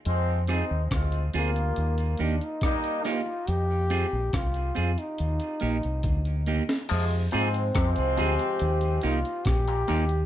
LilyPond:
<<
  \new Staff \with { instrumentName = "Trombone" } { \time 4/4 \key f \dorian \tempo 4 = 70 r4. bes4 d'16 ees'8. f'8 | g'4 f'8. ees'4.~ ees'16 r8 | r8 c'4 g'4 f'8 g'4 | }
  \new Staff \with { instrumentName = "Clean electric guitar" } { \time 4/4 \key f \dorian r8 <c' f' aes'>8 r8 <c' f' aes'>8 r8 <bes ees' g'>8 r8 <bes ees' g'>8 | r8 <c' f' aes'>8 r8 <c' f' aes'>8 r8 <bes ees' g'>8 r8 <bes ees' g'>8 | r8 <c' f' aes'>8 r8 <c' f' aes'>8 r8 <bes ees' g'>8 r8 <bes ees' g'>8 | }
  \new Staff \with { instrumentName = "Trombone section" } { \clef bass \time 4/4 \key f \dorian <f aes c'>8 <aes c' ees'>8 <aes c' f'>8 <g bes f'>4 r8 <g bes ees'>8. r16 | r1 | <c f aes>8 <f aes c'>8 <f aes c'>4. <g bes ees'>16 r4 r16 | }
  \new Staff \with { instrumentName = "Clav" } { \clef bass \time 4/4 \key f \dorian r1 | r1 | f16 r16 bes,16 r16 c16 r16 aes,16 r4. bes,16 bes,16 r16 | }
  \new Staff \with { instrumentName = "Fingered electric bass" } { \clef bass \time 4/4 \key f \dorian f,8. ees,16 d,8 d,8 ees,8 ees,16 r4 r16 | f,8. bes,,16 c,8 f,16 r16 ees,16 r16 bes,,16 c,16 d,8. r16 | f,8 aes,8 f,16 c,16 d,16 r16 ees,8 c,16 r16 bes,,8 ees,8 | }
  \new DrumStaff \with { instrumentName = "Drums" } \drummode { \time 4/4 hh8 <hh ss>8 <hh bd ss>16 hh16 hh16 hh16 hh16 hh16 hh16 hh16 <hh bd ss>16 hh16 hho8 | hh8 hh8 <hh bd ss>16 hh16 hh16 hh16 hh16 hh16 hh16 hh16 <hh bd>16 hh16 hh16 sn16 | <cymc hh>16 hh16 hh16 hh16 <hh bd ss>16 hh16 hh16 hh16 hh16 hh16 hh16 hh16 <hh bd ss>16 hh16 hh16 hh16 | }
>>